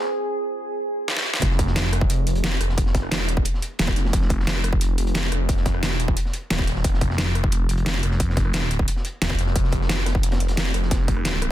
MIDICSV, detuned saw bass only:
0, 0, Header, 1, 2, 480
1, 0, Start_track
1, 0, Key_signature, -4, "minor"
1, 0, Tempo, 338983
1, 91, Time_signature, 4, 2, 24, 8
1, 16311, End_track
2, 0, Start_track
2, 0, Title_t, "Detuned saw bass"
2, 0, Program_c, 0, 39
2, 2011, Note_on_c, 0, 29, 96
2, 3192, Note_off_c, 0, 29, 0
2, 3211, Note_on_c, 0, 29, 96
2, 3672, Note_off_c, 0, 29, 0
2, 3692, Note_on_c, 0, 29, 93
2, 4527, Note_off_c, 0, 29, 0
2, 4527, Note_on_c, 0, 28, 93
2, 4872, Note_off_c, 0, 28, 0
2, 5371, Note_on_c, 0, 27, 98
2, 5592, Note_off_c, 0, 27, 0
2, 5611, Note_on_c, 0, 29, 96
2, 5832, Note_off_c, 0, 29, 0
2, 5851, Note_on_c, 0, 29, 96
2, 7032, Note_off_c, 0, 29, 0
2, 7051, Note_on_c, 0, 29, 101
2, 7512, Note_off_c, 0, 29, 0
2, 7532, Note_on_c, 0, 29, 97
2, 8367, Note_off_c, 0, 29, 0
2, 8367, Note_on_c, 0, 28, 97
2, 8712, Note_off_c, 0, 28, 0
2, 9211, Note_on_c, 0, 27, 97
2, 9672, Note_off_c, 0, 27, 0
2, 9691, Note_on_c, 0, 29, 97
2, 10872, Note_off_c, 0, 29, 0
2, 10891, Note_on_c, 0, 29, 99
2, 11352, Note_off_c, 0, 29, 0
2, 11370, Note_on_c, 0, 29, 99
2, 12552, Note_off_c, 0, 29, 0
2, 13051, Note_on_c, 0, 27, 96
2, 13272, Note_off_c, 0, 27, 0
2, 13291, Note_on_c, 0, 29, 97
2, 13512, Note_off_c, 0, 29, 0
2, 13531, Note_on_c, 0, 29, 98
2, 14712, Note_off_c, 0, 29, 0
2, 14731, Note_on_c, 0, 29, 97
2, 15192, Note_off_c, 0, 29, 0
2, 15211, Note_on_c, 0, 29, 96
2, 16311, Note_off_c, 0, 29, 0
2, 16311, End_track
0, 0, End_of_file